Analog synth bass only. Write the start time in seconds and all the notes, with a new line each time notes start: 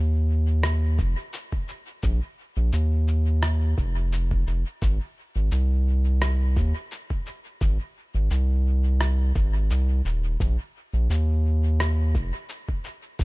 Already playing: D#2
0.99 F1
2.03 A#1
2.57 A#1
2.73 D#2
3.78 F1
4.47 F1
4.82 G#1
5.36 G#1
5.52 C2
6.57 D#2
7.61 G#1
8.15 G#1
8.31 C2
9.36 G#1
9.71 C2
10.05 D#1
10.40 A#1
10.93 A#1
11.10 D#2
12.15 F1
13.20 A#1